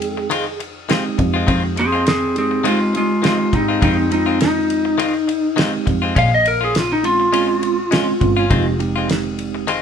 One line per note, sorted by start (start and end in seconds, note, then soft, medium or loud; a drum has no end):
0.00 0.98 F2 medium
0.00 0.28 G#3 medium
0.00 0.28 C4 medium
0.00 0.28 D#4 medium
0.00 0.57 G#4 medium
0.00 0.28 G5 medium
0.00 ride medium
0.17 muted clean electric guitar stroke soft
0.30 0.47 D#3 medium
0.30 0.47 G#3 medium
0.30 0.46 C4 medium
0.30 0.45 F4 medium
0.30 ride medium
0.47 muted clean electric guitar stroke soft
0.60 muted clean electric guitar stroke soft
0.60 ride medium
0.89 1.05 D#3 medium
0.89 1.75 G#3 medium
0.89 1.05 G#3 medium
0.89 1.75 C4 medium
0.89 1.05 C4 medium
0.89 1.75 D#4 medium
0.89 1.04 F4 medium
0.89 1.75 G4 medium
0.89 snare loud
0.89 ride medium
1.05 muted clean electric guitar stroke soft
1.18 1.45 F2 medium
1.18 muted clean electric guitar stroke soft
1.18 kick medium
1.18 ride medium
1.34 1.46 G#3 medium
1.34 1.47 C4 medium
1.34 1.47 F4 medium
1.47 3.32 F2 medium
1.47 1.64 D#3 medium
1.47 1.64 G#3 medium
1.47 1.63 C4 medium
1.47 1.62 F4 medium
1.47 kick loud
1.47 ride medium
1.63 muted clean electric guitar stroke soft
1.76 2.07 C4 medium
1.76 muted clean electric guitar stroke soft
1.76 ride medium
1.80 2.07 G#4 medium
1.92 2.05 G#3 soft
1.92 2.05 C4 soft
1.92 2.06 F4 medium
2.06 2.34 C4 medium
2.06 2.36 G#4 medium
2.06 muted clean electric guitar stroke soft
2.06 snare loud
2.06 ride medium
2.35 2.58 G#3 medium
2.35 2.58 C4 medium
2.35 2.64 C4 medium
2.35 2.58 D#4 medium
2.35 2.58 G4 medium
2.35 2.65 G#4 medium
2.35 ride medium
2.51 muted clean electric guitar stroke soft
2.64 2.81 D#3 medium
2.64 2.81 G#3 medium
2.64 3.09 G#3 medium
2.64 2.93 G#3 medium
2.64 3.09 C4 medium
2.64 2.80 C4 medium
2.64 3.09 D#4 medium
2.64 2.79 F4 medium
2.64 3.09 G4 medium
2.64 ride medium
2.68 2.95 F4 medium
2.81 muted clean electric guitar stroke soft
2.94 3.22 G#3 medium
2.94 3.24 F4 medium
2.94 muted clean electric guitar stroke soft
2.94 ride medium
3.22 3.39 D#3 medium
3.22 3.39 G#3 medium
3.22 3.46 G#3 medium
3.22 3.52 G#3 medium
3.22 3.46 C4 medium
3.22 3.39 C4 medium
3.22 3.46 D#4 medium
3.22 3.38 F4 medium
3.22 3.46 G4 medium
3.22 snare loud
3.22 ride medium
3.26 3.53 F4 medium
3.39 muted clean electric guitar stroke soft
3.52 3.79 G#2 medium
3.52 3.75 G#3 medium
3.52 3.75 C4 medium
3.52 3.81 C4 medium
3.52 3.75 D#4 medium
3.52 3.82 D#4 medium
3.52 3.75 G4 medium
3.52 muted clean electric guitar stroke soft
3.52 kick medium
3.52 ride medium
3.69 3.81 G#3 soft
3.69 3.81 C4 soft
3.69 3.82 F4 medium
3.81 5.66 F2 medium
3.81 3.98 D#3 medium
3.81 3.98 G#3 medium
3.81 4.04 G#3 medium
3.81 4.04 C4 medium
3.81 3.97 C4 medium
3.81 4.10 C4 medium
3.81 4.04 D#4 medium
3.81 4.11 D#4 medium
3.81 3.96 F4 medium
3.81 4.04 G4 medium
3.81 kick loud
3.81 ride medium
3.98 muted clean electric guitar stroke soft
4.10 4.97 G#3 medium
4.10 4.97 C4 medium
4.10 4.39 C4 medium
4.10 4.97 D#4 medium
4.10 4.40 D#4 medium
4.10 4.97 F4 medium
4.10 muted clean electric guitar stroke soft
4.10 ride medium
4.26 4.39 G#3 soft
4.26 4.39 C4 soft
4.26 4.40 F4 soft
4.40 5.54 D#4 medium
4.40 muted clean electric guitar stroke soft
4.40 snare loud
4.40 ride medium
4.70 ride medium
4.85 muted clean electric guitar stroke soft
4.98 5.15 D#3 medium
4.98 5.14 G#3 medium
4.98 5.14 C4 medium
4.98 5.13 F4 medium
4.98 ride medium
5.14 muted clean electric guitar stroke soft
5.28 muted clean electric guitar stroke soft
5.28 ride medium
5.56 5.73 D#3 medium
5.56 5.73 G#3 medium
5.56 6.16 G#3 medium
5.56 6.16 C4 medium
5.56 5.73 C4 medium
5.56 6.16 D#4 medium
5.56 5.72 F4 medium
5.56 6.16 G4 medium
5.56 snare loud
5.56 ride medium
5.73 muted clean electric guitar stroke soft
5.86 6.13 F2 medium
5.86 muted clean electric guitar stroke soft
5.86 kick medium
5.86 ride medium
6.02 6.14 G#3 soft
6.02 6.16 C4 soft
6.02 6.15 F4 medium
6.15 8.00 A#1 medium
6.15 6.32 G#3 medium
6.15 6.32 C#4 medium
6.15 6.30 F4 medium
6.15 6.33 F5 medium
6.15 kick loud
6.15 ride medium
6.32 6.46 D#5 medium
6.32 muted clean electric guitar stroke soft
6.45 6.62 A#4 medium
6.45 muted clean electric guitar stroke soft
6.45 ride medium
6.61 6.74 C#4 soft
6.61 6.74 F4 medium
6.61 6.76 G#4 medium
6.74 6.91 F4 medium
6.74 muted clean electric guitar stroke soft
6.74 snare loud
6.74 ride medium
6.93 7.05 D#4 medium
7.03 7.26 G#3 medium
7.03 7.26 C4 medium
7.03 7.26 C#4 medium
7.03 7.26 F4 medium
7.03 8.76 F4 medium
7.03 ride medium
7.20 muted clean electric guitar stroke soft
7.32 7.49 G#3 medium
7.32 7.77 G#3 medium
7.32 7.77 C4 medium
7.32 7.77 C#4 medium
7.32 7.49 C#4 medium
7.32 7.77 F4 medium
7.32 7.48 F4 medium
7.32 ride medium
7.49 muted clean electric guitar stroke soft
7.62 muted clean electric guitar stroke soft
7.62 ride medium
7.91 8.14 G#3 medium
7.91 8.08 G#3 medium
7.91 8.14 C4 medium
7.91 8.14 C#4 medium
7.91 8.08 C#4 medium
7.91 8.14 F4 loud
7.91 8.07 F4 medium
7.91 snare loud
7.91 ride medium
8.08 muted clean electric guitar stroke soft
8.21 8.47 G1 medium
8.21 8.43 G#3 medium
8.21 8.43 C4 medium
8.21 8.43 C#4 medium
8.21 8.43 F4 loud
8.21 muted clean electric guitar stroke soft
8.21 kick medium
8.21 ride medium
8.37 8.51 C#4 medium
8.37 8.50 F4 medium
8.50 9.82 F1 medium
8.50 8.66 D#3 medium
8.50 8.72 G#3 medium
8.50 8.67 G#3 medium
8.50 8.72 C4 medium
8.50 8.66 C4 medium
8.50 8.72 D#4 medium
8.50 8.66 F4 medium
8.50 8.72 G4 loud
8.50 kick loud
8.50 ride medium
8.67 muted clean electric guitar stroke soft
8.79 9.65 G#3 medium
8.79 9.65 C4 medium
8.79 9.65 D#4 medium
8.79 9.65 G4 loud
8.79 muted clean electric guitar stroke soft
8.79 ride medium
8.96 9.08 G#3 soft
8.96 9.09 C4 soft
8.96 9.09 F4 medium
9.09 muted clean electric guitar stroke soft
9.09 snare loud
9.09 ride medium
9.39 ride medium
9.55 muted clean electric guitar stroke soft
9.67 9.82 D#3 medium
9.67 9.82 G#3 medium
9.67 9.82 C4 loud
9.67 9.82 F4 medium
9.67 ride medium